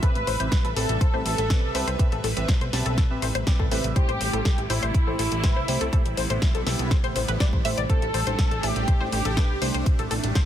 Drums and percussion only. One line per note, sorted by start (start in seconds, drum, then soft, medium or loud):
0.03 kick loud
0.03 closed hi-hat medium
0.15 closed hi-hat soft
0.27 open hi-hat loud
0.40 closed hi-hat medium
0.52 kick loud
0.52 snare loud
0.52 closed hi-hat medium
0.65 closed hi-hat soft
0.76 open hi-hat loud
0.89 closed hi-hat medium
1.01 kick loud
1.01 closed hi-hat medium
1.26 open hi-hat loud
1.38 closed hi-hat medium
1.50 kick loud
1.50 snare loud
1.50 closed hi-hat medium
1.75 open hi-hat medium
1.88 closed hi-hat medium
1.99 kick loud
1.99 closed hi-hat medium
2.12 closed hi-hat soft
2.24 open hi-hat loud
2.37 closed hi-hat medium
2.48 kick loud
2.48 snare loud
2.48 closed hi-hat medium
2.61 closed hi-hat soft
2.73 snare medium
2.73 open hi-hat loud
2.86 closed hi-hat soft
2.98 kick loud
2.98 snare medium
2.98 closed hi-hat medium
3.22 open hi-hat loud
3.35 closed hi-hat medium
3.47 kick loud
3.47 snare loud
3.47 closed hi-hat medium
3.60 kick medium
3.71 open hi-hat medium
3.84 closed hi-hat medium
3.96 kick loud
3.96 closed hi-hat medium
4.09 closed hi-hat soft
4.21 open hi-hat loud
4.33 closed hi-hat medium
4.45 kick loud
4.45 snare loud
4.45 closed hi-hat medium
4.58 closed hi-hat soft
4.70 open hi-hat loud
4.83 closed hi-hat soft
4.94 kick loud
4.94 closed hi-hat medium
5.19 open hi-hat loud
5.32 closed hi-hat medium
5.44 kick loud
5.44 snare loud
5.44 closed hi-hat medium
5.68 open hi-hat loud
5.81 closed hi-hat medium
5.93 kick loud
5.93 closed hi-hat medium
6.06 closed hi-hat soft
6.17 open hi-hat loud
6.30 closed hi-hat soft
6.42 kick loud
6.42 snare loud
6.42 closed hi-hat medium
6.55 closed hi-hat soft
6.67 snare medium
6.67 open hi-hat medium
6.79 closed hi-hat soft
6.91 kick loud
6.91 snare medium
6.91 closed hi-hat medium
7.04 closed hi-hat soft
7.16 open hi-hat loud
7.28 closed hi-hat medium
7.40 kick loud
7.40 snare loud
7.40 closed hi-hat medium
7.53 kick medium
7.65 open hi-hat loud
7.78 closed hi-hat soft
7.89 kick loud
7.89 closed hi-hat medium
8.02 closed hi-hat soft
8.14 open hi-hat loud
8.27 closed hi-hat medium
8.39 kick loud
8.39 snare loud
8.39 closed hi-hat medium
8.51 closed hi-hat soft
8.63 open hi-hat medium
8.76 closed hi-hat soft
8.88 kick loud
8.88 closed hi-hat medium
9.12 open hi-hat loud
9.25 closed hi-hat medium
9.37 kick loud
9.37 snare loud
9.37 closed hi-hat medium
9.62 open hi-hat medium
9.74 closed hi-hat medium
9.86 kick loud
9.86 closed hi-hat medium
9.99 closed hi-hat soft
10.11 open hi-hat loud
10.24 closed hi-hat medium
10.35 kick loud
10.35 snare loud
10.35 closed hi-hat medium